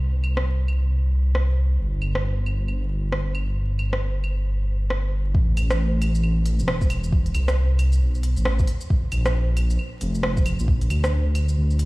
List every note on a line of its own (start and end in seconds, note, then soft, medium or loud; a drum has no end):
0.00 1.77 C2 medium
0.24 claves medium
0.37 cross-stick medium
0.68 claves soft
1.35 cross-stick medium
1.79 5.33 G1 medium
2.02 claves medium
2.15 cross-stick medium
2.46 claves soft
2.68 claves soft
3.12 cross-stick medium
3.35 claves medium
3.79 claves medium
3.93 cross-stick medium
4.24 claves medium
4.90 cross-stick medium
5.35 6.61 A1 loud
5.35 kick loud
5.57 open hi-hat medium
5.57 claves medium
5.57 shaker soft
5.71 cross-stick loud
5.71 shaker medium
6.02 open hi-hat medium
6.02 claves medium
6.15 shaker medium
6.24 claves soft
6.46 open hi-hat medium
6.59 7.34 E1 medium
6.59 shaker medium
6.68 cross-stick loud
6.81 kick loud
6.81 shaker soft
6.90 open hi-hat medium
6.90 claves medium
7.04 shaker medium
7.12 kick loud
7.26 open hi-hat soft
7.35 8.00 C2 medium
7.35 open hi-hat medium
7.35 claves medium
7.35 shaker soft
7.48 cross-stick loud
7.48 shaker medium
7.79 open hi-hat medium
7.79 claves medium
7.92 shaker medium
8.02 8.36 B1 medium
8.15 shaker soft
8.23 open hi-hat medium
8.37 8.67 A1 medium
8.37 shaker medium
8.45 cross-stick loud
8.59 kick loud
8.59 shaker soft
8.67 open hi-hat medium
8.81 shaker medium
8.90 kick loud
9.12 9.78 A#1 medium
9.12 open hi-hat medium
9.12 claves medium
9.12 shaker soft
9.26 cross-stick loud
9.26 shaker medium
9.57 open hi-hat medium
9.57 claves medium
9.70 shaker medium
9.79 claves soft
10.01 10.58 F1 loud
10.01 open hi-hat medium
10.15 shaker medium
10.23 cross-stick loud
10.37 kick loud
10.37 shaker soft
10.46 open hi-hat medium
10.46 claves medium
10.59 10.89 A#1 medium
10.59 shaker medium
10.68 kick loud
10.81 open hi-hat soft
10.90 11.56 D2 medium
10.90 open hi-hat medium
10.90 claves medium
10.90 shaker soft
11.04 cross-stick loud
11.04 shaker medium
11.35 open hi-hat medium
11.35 claves soft
11.49 shaker medium
11.57 11.85 D2 medium
11.70 shaker soft
11.79 open hi-hat medium